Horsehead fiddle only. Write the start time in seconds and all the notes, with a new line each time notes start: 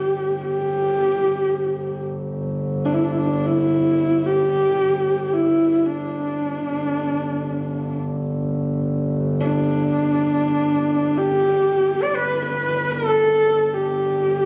Already playing: G4
0.48 G4
2.85 D4
2.94 E4
3.03 D4
3.12 E4
3.18 D4
3.46 E4
4.26 G4
5.23 G4
5.33 E4
5.86 D4
9.41 D4
11.18 G4
12.03 D5
12.15 B4
12.46 B4
12.92 A4
13.74 G4